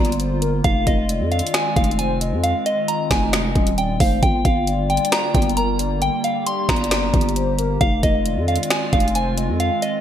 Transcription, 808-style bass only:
0.00 0.62 G1 loud
0.64 0.86 F1 loud
0.87 1.22 F1 loud
1.21 1.42 F2 loud
1.76 2.34 F1 loud
2.32 2.54 F2 loud
3.11 3.54 F1 loud
3.55 3.98 D#1 loud
4.00 4.22 F1 loud
4.23 4.44 G1 loud
4.45 4.99 G1 loud
5.35 6.10 G1 loud
6.69 7.12 G1 loud
7.14 7.78 G1 loud
7.81 8.02 F1 loud
8.03 8.38 F1 loud
8.37 8.58 F2 loud
8.93 9.50 F1 loud
9.49 9.70 F2 loud

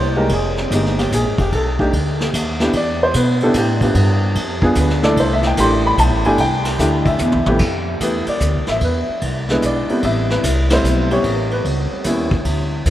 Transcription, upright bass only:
0.00 0.29 C2 loud
0.29 0.69 F1 medium
0.70 1.10 G1 loud
1.11 1.24 A#1 loud
1.24 1.37 G#1 medium
1.37 1.51 F1 medium
1.52 1.92 B1 medium
1.93 2.32 D2 medium
2.34 2.73 D#2 medium
2.73 3.13 E2 medium
3.14 3.53 B2 medium
3.54 3.94 A2 loud
3.95 4.35 G2 medium
4.35 4.75 F2 medium
4.76 5.16 D2 medium
5.16 5.56 C2 medium
5.57 5.97 A1 loud
5.97 6.11 B1 loud
6.11 6.24 A1 medium
6.25 6.38 G1 medium
6.38 6.78 C2 loud
6.79 7.18 D2 loud
7.20 7.35 E2 loud
7.34 7.45 C2 medium
7.46 7.59 A1 medium
7.59 7.99 F2 medium
8.00 8.25 E2 medium
8.27 muted upright bass stroke soft
8.40 8.56 D2 medium
8.55 8.68 C2 medium
8.68 8.80 A1 medium
8.81 9.06 E2 medium
9.09 muted upright bass stroke soft
9.22 9.61 C2 medium
9.62 9.87 B1 medium
9.88 muted upright bass stroke soft
10.03 10.43 A1 medium
10.43 10.83 C2 medium
10.84 11.23 B1 medium
11.24 11.64 A1 medium
11.65 11.90 C#2 medium
11.91 muted upright bass stroke soft
12.05 12.44 D#2 medium
12.45 12.85 D2 medium
12.86 12.90 E2 medium

